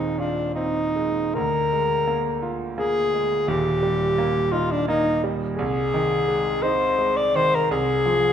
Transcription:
0.00 1.31 D#1 soft
0.00 1.31 D#2 medium
0.00 0.96 G#3 soft
0.00 0.41 C4 soft
0.00 0.21 D#4 medium
0.19 0.54 D4 medium
0.19 0.78 F4 soft
0.55 1.20 C4 soft
0.55 1.36 D#4 medium
0.96 1.36 G#3 soft
1.35 3.45 D2 medium
1.35 2.51 A#4 medium
1.73 2.28 G#3 soft
2.07 2.64 A#3 soft
2.42 3.00 F4 soft
2.78 3.35 A#3 medium
2.78 3.49 G#4 medium
3.14 3.49 G#3 soft
3.47 5.54 D#1 medium
3.47 5.55 D#2 medium
3.47 4.54 G4 medium
3.83 4.40 G3 soft
4.18 4.75 A#3 medium
4.52 5.09 D#4 medium
4.52 4.73 F4 medium
4.72 4.87 D4 medium
4.88 5.45 A#3 medium
4.88 5.23 D#4 medium
5.24 5.59 G3 medium
5.56 7.66 C2 medium
5.56 6.64 G#4 medium
5.94 6.49 D#3 medium
6.28 6.85 G#3 medium
6.62 7.20 D#4 medium
6.62 7.18 C5 medium
6.98 7.56 G#3 medium
7.16 7.37 D5 medium
7.35 7.70 D#3 medium
7.35 7.57 C5 loud
7.55 7.71 A#4 medium
7.71 8.33 C2 medium
7.71 8.33 G#4 medium
8.06 8.33 F3 medium

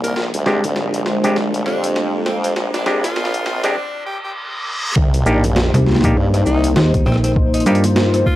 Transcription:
0.00 0.14 C2 loud
0.00 0.13 A#3 medium
0.00 0.12 D#4 medium
0.00 0.12 G4 medium
0.00 0.23 A#4 medium
0.00 0.14 D5 medium
0.00 riser medium
0.04 closed hi-hat medium
0.16 0.31 A#1 medium
0.16 3.73 G#3 medium
0.16 3.72 D4 medium
0.16 3.72 G4 medium
0.16 3.72 C5 medium
0.16 snare medium
0.34 0.61 D2 medium
0.34 closed hi-hat medium
0.46 0.64 G#3 medium
0.46 0.64 C4 medium
0.46 0.64 D4 medium
0.46 0.64 G4 medium
0.46 snare medium
0.64 0.74 D2 medium
0.64 closed hi-hat medium
0.76 1.64 A#1 medium
0.76 snare medium
0.94 closed hi-hat medium
1.06 snare medium
1.24 1.37 G#3 medium
1.24 1.37 C4 medium
1.24 1.37 D4 medium
1.24 1.37 G4 medium
1.24 closed hi-hat medium
1.36 snare medium
1.54 closed hi-hat soft
1.66 2.54 F2 loud
1.66 1.87 D4 medium
1.66 snare medium
1.84 closed hi-hat medium
1.96 snare medium
2.26 2.37 C4 medium
2.26 snare medium
2.44 2.52 C4 medium
2.44 closed hi-hat medium
2.56 2.71 A#1 loud
2.56 snare medium
2.74 3.14 A#1 loud
2.74 2.82 D4 medium
2.74 snare medium
2.74 closed hi-hat medium
2.86 3.04 G#3 medium
2.86 3.04 C4 medium
2.86 3.04 D4 medium
2.86 2.98 D4 medium
2.86 3.04 G4 medium
2.86 snare medium
3.04 3.60 F4 loud
3.04 snare medium
3.04 closed hi-hat medium
3.16 3.76 A#1 loud
3.16 snare loud
3.25 snare medium
3.34 closed hi-hat medium
3.46 snare medium
3.64 3.76 G#3 medium
3.64 3.76 C4 medium
3.64 4.04 D4 medium
3.64 3.76 D4 medium
3.64 3.76 G4 medium
3.64 snare medium
3.64 closed hi-hat medium
3.76 reverse cymbal medium
4.06 4.18 G4 medium
4.24 4.32 G4 medium
4.96 5.24 C2 medium
4.96 8.36 A#3 medium
4.96 8.36 D#4 medium
4.96 7.34 G4 medium
4.96 8.36 C5 loud
4.96 kick loud
4.96 sub drop medium
5.14 closed hi-hat medium
5.26 5.71 A#1 loud
5.26 5.44 A#3 medium
5.26 5.44 D4 medium
5.26 5.44 D#4 medium
5.26 5.44 G4 medium
5.26 shaker medium
5.44 closed hi-hat medium
5.56 snare loud
5.74 6.01 C2 medium
5.74 cross-stick soft
5.74 closed hi-hat medium
5.87 snare soft
5.90 snare soft
5.92 snare soft
5.95 snare soft
6.01 6.14 A#1 loud
6.01 6.17 A#3 medium
6.01 6.17 D4 medium
6.01 6.17 D#4 medium
6.01 6.17 G4 medium
6.01 kick loud
6.01 snare medium
6.01 closed hi-hat medium
6.16 6.44 G2 loud
6.34 cross-stick soft
6.34 closed hi-hat soft
6.46 6.74 C2 loud
6.46 6.67 D#4 medium
6.46 shaker medium
6.64 closed hi-hat medium
6.76 7.04 D#2 loud
6.76 snare loud
6.94 kick loud
6.94 closed hi-hat soft
7.06 7.64 A#1 medium
7.06 7.18 C4 medium
7.06 cross-stick medium
7.12 cross-stick soft
7.16 cross-stick soft
7.24 7.32 C4 medium
7.24 cross-stick soft
7.24 closed hi-hat medium
7.26 cross-stick soft
7.32 cross-stick soft
7.36 8.36 F4 medium
7.36 kick loud
7.54 7.62 D#4 medium
7.54 closed hi-hat medium
7.60 closed hi-hat soft
7.66 8.24 G2 loud
7.66 7.84 A#3 medium
7.66 7.84 D4 medium
7.66 7.78 D#4 medium
7.66 7.84 D#4 medium
7.66 7.84 G4 medium
7.66 closed hi-hat soft
7.66 shaker medium
7.75 closed hi-hat soft
7.84 closed hi-hat medium
7.96 snare loud
8.14 cross-stick soft
8.14 closed hi-hat medium
8.26 8.36 F4 medium
8.26 kick medium

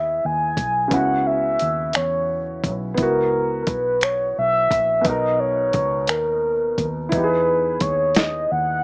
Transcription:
0.00 0.19 D#2 medium
0.00 0.87 B3 soft
0.00 0.86 E4 medium
0.00 0.90 G#4 medium
0.00 0.27 E5 medium
0.25 0.55 D#2 medium
0.25 0.93 G#5 medium
0.57 0.89 B1 medium
0.57 kick medium
0.57 closed hi-hat medium
0.88 2.93 C#3 medium
0.88 2.93 B3 soft
0.88 2.94 C#4 medium
0.88 kick loud
0.88 closed hi-hat medium
0.92 1.57 C#2 loud
0.92 2.96 E4 medium
0.92 2.97 F#4 medium
0.92 1.28 F#5 medium
1.26 1.97 E5 loud
1.59 1.92 D#2 medium
1.59 closed hi-hat medium
1.93 2.66 E2 medium
1.93 2.73 C#5 medium
1.93 finger snap loud
1.93 closed hi-hat medium
2.64 2.95 B1 medium
2.64 kick medium
2.64 closed hi-hat medium
2.95 4.99 B3 medium
2.95 5.01 E4 soft
2.95 kick loud
2.95 closed hi-hat medium
2.99 3.64 C#2 medium
2.99 5.03 F#4 medium
2.99 3.63 A#4 medium
3.63 3.70 A#4 medium
3.67 4.33 B1 medium
3.67 4.05 B4 medium
3.67 kick medium
3.67 closed hi-hat medium
4.01 4.37 C#5 medium
4.01 finger snap loud
4.01 closed hi-hat medium
4.38 4.68 B1 medium
4.38 5.08 E5 medium
4.71 5.02 A#1 medium
4.71 kick medium
4.71 closed hi-hat medium
5.01 7.06 B2 medium
5.01 7.08 B3 medium
5.01 kick loud
5.01 closed hi-hat medium
5.06 5.71 B1 medium
5.06 7.09 D#4 medium
5.06 7.10 A#4 medium
5.06 5.41 D#5 medium
5.40 6.11 C#5 medium
5.73 6.10 C#2 medium
5.73 kick medium
5.73 closed hi-hat medium
6.07 6.74 D#2 medium
6.07 6.86 A#4 medium
6.07 finger snap loud
6.07 closed hi-hat medium
6.78 7.09 D#2 medium
6.78 kick medium
6.78 closed hi-hat medium
7.09 7.77 E2 loud
7.09 8.84 B3 medium
7.09 8.84 E4 medium
7.09 7.83 B4 loud
7.09 kick loud
7.09 closed hi-hat medium
7.14 8.84 D#4 medium
7.14 7.21 G4 soft
7.24 8.84 G#4 medium
7.81 8.47 D#2 medium
7.81 8.18 C#5 medium
7.81 kick medium
7.81 closed hi-hat medium
8.15 8.53 D#5 medium
8.15 snare loud
8.15 closed hi-hat medium
8.52 8.82 D#2 medium
8.52 8.84 F#5 loud

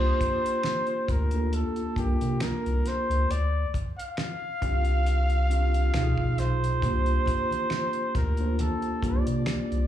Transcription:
0.00 0.12 C2 loud
0.00 1.23 A#3 medium
0.00 1.23 D4 medium
0.00 1.23 F4 medium
0.00 1.24 G4 medium
0.00 1.12 C5 loud
0.21 kick medium
0.21 closed hi-hat medium
0.46 closed hi-hat soft
0.63 finger snap medium
0.63 snare medium
0.63 closed hi-hat medium
0.87 closed hi-hat soft
1.08 1.64 D2 medium
1.08 1.56 A#4 medium
1.08 kick medium
1.08 closed hi-hat medium
1.31 1.93 A#3 medium
1.31 1.94 D4 medium
1.31 1.94 F4 medium
1.31 1.94 A4 medium
1.31 closed hi-hat soft
1.53 2.00 A4 medium
1.53 closed hi-hat medium
1.76 closed hi-hat soft
1.96 2.16 C2 medium
1.96 3.29 A#3 medium
1.96 3.29 D4 medium
1.96 3.30 F4 medium
1.96 2.44 G4 medium
1.96 3.30 A#4 medium
1.96 kick medium
1.96 closed hi-hat medium
2.21 2.38 C3 medium
2.21 closed hi-hat soft
2.40 2.51 C2 soft
2.40 2.89 A#4 medium
2.40 finger snap medium
2.40 snare loud
2.40 closed hi-hat medium
2.66 2.82 C2 medium
2.66 closed hi-hat soft
2.86 3.32 C5 medium
2.86 snare soft
2.86 closed hi-hat soft
3.09 3.26 C#2 medium
3.09 closed hi-hat soft
3.30 3.65 D2 medium
3.30 3.69 D5 loud
3.30 closed hi-hat medium
3.74 kick medium
3.74 closed hi-hat medium
3.99 6.41 F5 loud
3.99 closed hi-hat soft
4.17 finger snap medium
4.17 snare medium
4.17 closed hi-hat medium
4.61 5.90 C2 medium
4.61 5.45 C4 medium
4.61 5.45 D4 medium
4.61 5.45 F4 medium
4.61 5.46 G4 medium
4.61 kick medium
4.61 closed hi-hat medium
4.85 closed hi-hat soft
5.06 closed hi-hat medium
5.30 closed hi-hat soft
5.50 5.94 C4 medium
5.50 5.94 D4 medium
5.50 5.94 F4 medium
5.50 5.95 G4 medium
5.50 closed hi-hat medium
5.74 closed hi-hat soft
5.94 6.14 C#2 medium
5.94 6.78 B2 medium
5.94 6.78 D#4 medium
5.94 6.78 F4 medium
5.94 6.02 G4 medium
5.94 finger snap medium
5.94 snare loud
5.94 closed hi-hat medium
6.03 6.82 G#4 loud
6.18 6.34 A#1 medium
6.18 kick medium
6.38 6.75 B1 medium
6.38 8.18 C5 loud
6.38 snare soft
6.38 closed hi-hat soft
6.64 closed hi-hat soft
6.82 7.18 C2 medium
6.82 8.29 A#3 medium
6.82 8.29 D4 medium
6.82 8.29 F4 medium
6.82 8.30 G4 medium
6.82 kick loud
6.82 closed hi-hat medium
6.82 low conga soft
7.06 closed hi-hat soft
7.26 kick medium
7.26 closed hi-hat medium
7.26 muted conga soft
7.26 high conga medium
7.51 closed hi-hat soft
7.51 high conga medium
7.70 finger snap medium
7.70 snare medium
7.70 closed hi-hat medium
7.93 closed hi-hat soft
8.15 8.70 D2 medium
8.15 8.62 A#4 medium
8.15 kick medium
8.15 snare soft
8.15 closed hi-hat medium
8.15 muted conga soft
8.15 low conga medium
8.37 9.00 A#3 medium
8.37 9.00 D4 medium
8.37 9.00 F4 medium
8.37 9.01 C5 medium
8.37 closed hi-hat soft
8.59 9.06 A4 medium
8.59 closed hi-hat medium
8.59 muted conga soft
8.59 high conga medium
8.82 closed hi-hat soft
9.03 9.22 C2 medium
9.03 9.87 A#3 medium
9.03 9.87 D4 medium
9.03 9.87 F4 medium
9.03 9.87 G4 medium
9.03 9.87 D5 medium
9.03 kick medium
9.03 closed hi-hat medium
9.03 muted conga soft
9.03 high conga soft
9.27 9.43 C3 medium
9.27 closed hi-hat soft
9.46 9.57 C2 soft
9.46 finger snap medium
9.46 snare loud
9.46 closed hi-hat medium
9.46 muted conga soft
9.46 high conga soft
9.72 9.87 C2 medium
9.72 closed hi-hat soft

